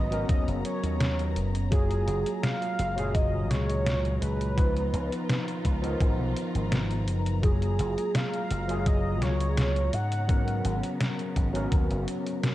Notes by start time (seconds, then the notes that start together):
Already playing: G#1 C#3 F#3 B3 C#4 B4 D#5 A#5
0.11 F#3 B3 C#4 A#4, closed hi-hat
0.29 D#2 D#5, kick, closed hi-hat
0.48 F#1, closed hi-hat
0.65 C#5, closed hi-hat
0.83 D#2, closed hi-hat
1.00 snare, closed hi-hat
1.19 closed hi-hat
1.36 F#1, closed hi-hat
1.55 closed hi-hat
1.70 F#3 G#3 A#3 F4 G#4, kick, closed hi-hat
1.91 closed hi-hat
2.08 F#1, closed hi-hat
2.26 closed hi-hat
2.43 F5, snare, closed hi-hat
2.62 closed hi-hat
2.79 F#1, closed hi-hat
2.96 A#2 F#3 F4 G#4, closed hi-hat
3.14 D#5, kick, closed hi-hat
3.50 C#2 C#5, snare, closed hi-hat
3.70 closed hi-hat
3.86 snare, closed hi-hat
4.05 closed hi-hat
4.21 C#2 B4, closed hi-hat
4.41 closed hi-hat
4.56 D#3 F3 B3 D#4 F4 B4 A#5, kick, closed hi-hat
4.77 closed hi-hat
4.93 C#2, closed hi-hat
5.12 closed hi-hat
5.29 snare, closed hi-hat
5.48 closed hi-hat
5.65 C#2, kick, closed hi-hat
5.82 F3 B3 D#4 A#4, closed hi-hat
6.01 G#1, kick, closed hi-hat
6.19 B1
6.37 closed hi-hat
6.55 G#1, closed hi-hat
6.72 snare, closed hi-hat
6.91 closed hi-hat
7.08 F#1, closed hi-hat
7.26 closed hi-hat
7.42 F#3 G#3 A#3 F4 G#4, kick, closed hi-hat
7.62 closed hi-hat
7.79 F#1, closed hi-hat
7.98 closed hi-hat
8.15 F5, snare, closed hi-hat
8.34 closed hi-hat
8.51 F#1, closed hi-hat
8.68 F#3 A#3 F4 G#4, closed hi-hat
8.86 D#5, kick, closed hi-hat
9.22 C#2 C#5, snare, closed hi-hat
9.40 closed hi-hat
9.57 snare, closed hi-hat
9.76 closed hi-hat
9.93 G#2 C#3 B3 F#5, closed hi-hat
10.12 closed hi-hat
10.28 F#3 B3 C#4 A#4, kick, closed hi-hat
10.48 closed hi-hat
10.65 G#1, closed hi-hat
10.83 closed hi-hat
11.01 snare, closed hi-hat
11.19 closed hi-hat
11.36 G#1, kick, closed hi-hat
11.53 F#3 B3 C#4 A#4, closed hi-hat
11.72 D#2, kick, closed hi-hat
11.90 F#1, closed hi-hat
12.08 closed hi-hat
12.26 closed hi-hat
12.43 snare, closed hi-hat